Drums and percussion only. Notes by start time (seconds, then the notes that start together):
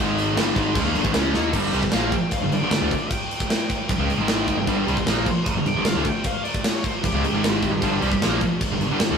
0.18 crash
0.37 snare, crash
0.56 kick, crash
0.75 kick, crash
0.95 crash
1.05 kick
1.14 snare, crash
1.34 snare
1.53 kick, crash
1.73 crash
1.83 kick
1.92 snare, crash
2.12 kick, crash
2.31 kick, crash
2.52 crash
2.71 snare, crash
2.91 kick, crash
3.11 kick, crash
3.31 crash
3.40 kick
3.50 snare, crash
3.70 kick, crash
3.89 kick, crash
4.10 crash
4.28 snare, crash
4.48 kick, crash
4.67 kick, crash
4.88 crash
4.97 kick
5.07 snare, crash
5.26 kick, crash
5.46 kick, crash
5.66 crash
5.85 snare, crash
6.04 kick, crash
6.24 kick, crash
6.45 crash
6.54 kick
6.64 snare, crash
6.84 kick, crash
7.04 kick, crash
7.24 crash
7.44 snare, crash
7.63 kick, crash
7.82 kick, crash
8.02 crash
8.12 kick
8.22 snare, crash
8.41 kick, crash
8.61 kick, crash
8.81 crash
9.00 snare, crash